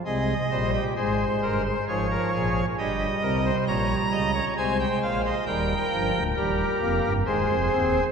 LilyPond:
<<
  \new Staff \with { instrumentName = "Pipe organ" } { \time 3/4 \key aes \major \tempo 4 = 67 << { ees''4 c''4 des''4 | ees''4 bes''4 aes''16 g''16 f''16 ees''16 | g''4 bes'4 c''4 | } \\ { aes'8 c''16 g'16 aes'8 bes'16 c''16 aes'16 bes'16 aes'8 | g'8 bes'16 c''16 des''8 ees''16 des''16 c''4 | bes'4 g'4 aes'4 | } >> }
  \new Staff \with { instrumentName = "Pipe organ" } { \clef bass \time 3/4 \key aes \major << { aes8 g8 aes4 f4 | g2 aes4 | g8 f8 g8 bes8 aes8 c'8 | } \\ { <c, c>8 <bes,, bes,>8 <aes,, aes,>8 <g,, g,>8 <aes,, aes,>8 <bes,, bes,>8 | <g,, g,>8 <c, c>8 <bes,, bes,>8 <des, des>8 <c, c>8 <bes,, bes,>8 | <ees,, ees,>8 <g,, g,>16 <d,, d,>16 <ees,, ees,>8 <f,, f,>16 <g,, g,>16 <ees,, ees,>16 <f,, f,>16 <ees,, ees,>8 | } >> }
>>